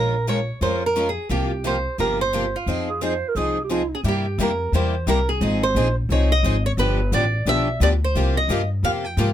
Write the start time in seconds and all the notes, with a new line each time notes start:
Already playing: A#1 F3 G#3 C#4 F4 A#4
0.27 F3 G#3 C#4 F4 A#4 C#5
0.61 F2 F3 G#3 C#4 F4 A#4 C5
0.86 A#4
0.96 F3 G#3 C#4 F4 A#4
1.09 G#4
1.29 C2 C3 F3 A#3 F4 G4
1.64 C3 F3 A#3 F4 G4 C5
1.98 G1 C3 F3 A#3 F4 G4 A#4
2.21 C5
2.33 C3 F3 A#3 F4 G4
2.56 F4
2.66 F2 F3 C4 D#4 G#4
2.88 G#4
3.01 F3 C4 D#4 G#4 C5
3.28 A#4
3.35 C2 F3 C4 D#4 G#4
3.64 G4
3.69 F3 C4 D#4 F4 G#4
3.95 G#4
4.04 G2 C3 G3 A#3 E4 G4
4.08 G4
4.38 F2 C3 G3 A#3 E4 G4
4.42 A#4
4.72 E2 C3 G3 A#3 E4 G4 C5
5.07 C2 C3 G3 A#3 E4 G4 A#4
5.29 G#4
5.41 G#1 F3 C4 D#4 G#4
5.63 C5
5.75 A#1 F3 C4 D#4 G#4
6.09 C2 F3 C4 D#4 G#4 C#5
6.32 D#5
6.43 G#1 F3 C4 D#4 G#4
6.66 C#5
6.77 G1 D3 F3 B3 D4 G4 B4
7.12 A1 D3 F3 B3 D4 G4 D5
7.46 B1 D3 F3 B3 D4 G4 E5
7.80 D2 D3 F3 B3 D4 G4 D5
8.04 C5
8.15 C2 C3 F3 A#3 F4 G4
8.37 D#5
8.48 G2 C3 F3 A#3 F4 G4
8.83 F2 C3 F3 A#3 F4 G4 F5
9.04 G5
9.17 G#2 C3 F3 A#3 F4 G4